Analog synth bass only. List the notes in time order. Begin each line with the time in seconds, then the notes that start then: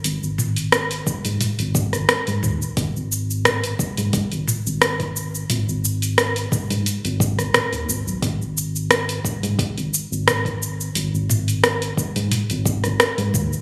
0.04 G#1
0.23 G#1
1.25 G#2
1.59 G#1
1.93 G#1
2.27 G#2
2.43 D#2
2.77 G#1
2.96 G#1
3.98 G#2
4.32 G#1
4.66 G#1
5.50 G#1
5.68 G#1
6.70 G#2
7.04 G#1
7.38 G#1
7.72 D#2
7.88 G#1
8.06 B1
8.22 G#1
8.40 G#1
9.43 G#2
9.77 G#1
10.11 G#1
10.95 G#1
11.14 G#1
12.16 G#2
12.50 G#1
12.84 G#1
13.18 G#2
13.34 D#2